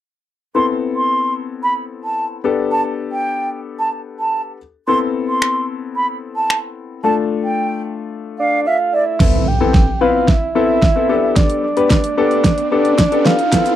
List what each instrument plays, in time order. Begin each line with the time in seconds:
0.55 grand piano B3 C4 E4 A4, flute C6
0.96 flute C6
1.63 flute B5
2.04 flute A5
2.44 grand piano B3 D4 G4 A4
2.72 flute A5
3.12 flute G5
3.79 flute A5
4.20 flute A5
4.88 grand piano B3 C4 E4 A4, flute C6
5.28 flute C6
5.42 finger snap
5.96 flute B5
6.36 flute A5
6.50 finger snap
7.04 grand piano A3 D4 F4 A4, flute A5
7.44 flute G5
8.39 soft synth lead D5, flute F5
8.66 flute E5, soft synth lead F5
8.93 flute D5, soft synth lead E5
9.20 grand piano B3 C4 E4 A4, kick, snare, crash, impact, riser
9.48 soft synth lead G5
9.60 grand piano B3 C4 E4 A4
9.74 kick, snare
10.01 grand piano B3 C4 E4 B4, soft synth lead F5
10.28 soft synth lead E5, kick, snare
10.55 grand piano B3 C4 E4 A4, soft synth lead E5
10.82 kick, snare
10.96 grand piano B3 C4 E4 A4
11.09 grand piano B3 D4 G4 A4
11.36 soft synth lead D5, kick, snare, closed hi-hat
11.50 closed hi-hat
11.64 soft synth lead D5
11.77 grand piano B3 D4 G4 B4, closed hi-hat
11.90 soft synth lead D5, kick, snare, closed hi-hat
12.04 closed hi-hat
12.17 grand piano B3 D4 G4 A4, soft synth lead D5
12.31 closed hi-hat
12.44 kick, snare, closed hi-hat
12.58 closed hi-hat
12.72 grand piano B3 D4 G4 A4, soft synth lead D5
12.85 closed hi-hat
12.98 kick, snare, closed hi-hat
13.12 grand piano B3 D4 G4 A4, closed hi-hat
13.25 soft synth lead F5, snare
13.39 closed hi-hat
13.52 grand piano B3 C4 E4 A4, kick, snare, closed hi-hat, shaker
13.66 closed hi-hat, shaker